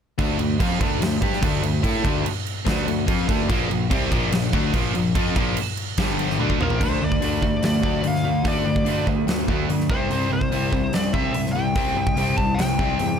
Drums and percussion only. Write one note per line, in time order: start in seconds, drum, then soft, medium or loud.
0.19 kick medium
0.19 crash medium
0.39 crash medium
0.60 kick loud
0.60 crash medium
0.81 kick loud
0.81 crash medium
1.02 snare loud
1.02 crash medium
1.22 kick loud
1.22 crash medium
1.33 snare soft
1.43 kick loud
1.43 crash medium
1.63 crash medium
1.84 kick medium
1.84 crash medium
2.05 kick loud
2.05 crash medium
2.26 crash medium
2.47 crash medium
2.67 kick loud
2.67 snare loud
2.67 crash medium
2.88 crash medium
3.08 kick loud
3.08 crash medium
3.29 kick loud
3.29 crash medium
3.50 kick loud
3.50 crash medium
3.71 crash medium
3.91 kick loud
3.91 crash medium
4.12 kick loud
4.12 crash medium
4.32 snare loud
4.32 crash medium
4.53 kick loud
4.53 crash medium
4.74 kick loud
4.74 crash medium
4.95 crash medium
5.15 kick loud
5.15 crash medium
5.36 kick loud
5.36 crash medium
5.57 crash medium
5.77 crash medium
5.97 kick loud
5.97 snare loud
5.97 crash medium
6.19 crash medium
6.30 snare soft
6.40 high tom medium
6.50 kick medium
6.61 mid tom medium
6.70 floor tom medium
6.81 kick medium
6.81 crash loud
7.12 kick medium
7.22 open hi-hat medium
7.42 kick medium
7.63 snare loud
7.63 open hi-hat medium
7.83 kick medium
8.04 open hi-hat medium
8.15 snare soft
8.45 kick loud
8.45 open hi-hat medium
8.76 kick medium
8.86 open hi-hat medium
9.07 kick medium
9.28 snare loud
9.28 open hi-hat medium
9.48 kick medium
9.70 open hi-hat soft
9.80 snare soft
9.90 kick loud
10.11 open hi-hat soft
10.41 kick medium
10.52 open hi-hat medium
10.73 kick medium
10.93 snare loud
10.93 open hi-hat medium
11.14 kick medium
11.34 open hi-hat medium
11.46 snare soft
11.75 kick loud
11.75 open hi-hat medium
12.07 kick medium
12.17 open hi-hat medium
12.38 kick medium
12.59 snare loud
12.59 open hi-hat medium
12.79 kick medium
12.99 open hi-hat medium